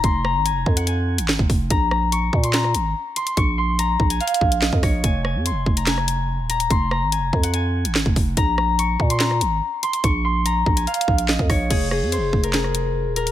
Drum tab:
CC |------------------------------------------------|------------------------------------------------|------------------------------------------------|------------------------------------------------|
HH |x-----------x--------x--x--------x--------o-----|x-----------x--------x--x-----x-----------x--x--|x-----------x--------x--x-x-x----x--------o-----|x-----------x--------x--x-----x-----------x--x--|
CP |------------------------------------x-----------|------------------------x-----------------------|------------------------------------x-----------|------------------------x-----------------------|
SD |------r-----------------------------o-----------|------r-----------------o--r--------------------|------------------------------------o-----r-----|------r-----------------o--r--------------------|
BD |o-----------------o--------------------o--o-----|o-----------------o-----------------------------|o-----------------o-----------o--------o--o-----|o-----------------o-----------------------------|

CC |------------------------------------------------|------------------------------------------------|------------------------------------------------|x-----------------------------------------------|
HH |x-----------x--------x--x--------x--------o-----|x-----------x--------x--x-----x-----------x--x--|x-----------x--------x--x-x-x----x--------o-----|x-----------x--------x--x-----x-----------x--x--|
CP |------------------------------------x-----------|------------------------x-----------------------|------------------------------------x-----------|------------------------x-----------------------|
SD |------r-----------------------------o-----------|------r-----------------o--r--------------------|------------------------------------o-----r-----|------r-----------------o--r--------------------|
BD |o-----------------o--------------------o--o-----|o-----------------o-----------------------------|o-----------------o-----------o--------o--o-----|o-----------------o-----------------------------|